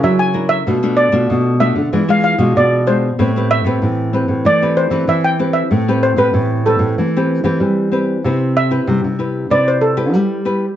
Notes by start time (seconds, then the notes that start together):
Already playing: D4 E4 A#4
0.03 C#3 F#3 E5
0.19 G#5
0.34 D4 E4 A#4
0.49 E5
0.67 B2 A3 D4 F4
0.83 A3 D4 F4
0.97 D5
1.12 B2 A3 D4 F4
1.29 B2
1.60 A3 D4 F4 E5
1.76 D3
1.92 E3 G#3 D4 F4
2.08 G#3 D4 F4 F5
2.24 F5
2.38 B2 G#3 D4 F4
2.56 B2 D5
2.87 G#3 D4 F4 C5
3.19 A2 A3 C4 G4 B4
3.36 C4 G4 B4
3.51 E5
3.64 A2 C4 G4 B4
3.82 A2 E3
4.13 C4 G4 B4
4.28 A2
4.45 E3 A3 D5
4.62 C4 G4 B4
4.77 C5
4.90 E3 C4 G4 B4
5.07 E3 E5
5.24 G5
5.39 C4 G4 B4
5.53 E5
5.71 A2 A3
5.88 C4 G4 B4
6.03 C5
6.16 A2 C4 G4 B4
6.34 A2 E3
6.66 C4 G4 A4 B4
6.79 A2
6.98 E3 A3
7.16 C4 G4 B4
7.44 E3 C4 G4 B4
7.60 E3 G3
7.92 C4 G4 B4
8.24 C3 C4 E4 G4 B4
8.57 E5
8.71 E4 G4 B4
8.87 C3 G3
9.04 C3
9.19 E4 G4 B4
9.50 C3 C4 E4 G4 B4 D5
9.68 C5
9.81 A4
9.97 E4 G4 B4
10.13 G3
10.45 E4 G4 B4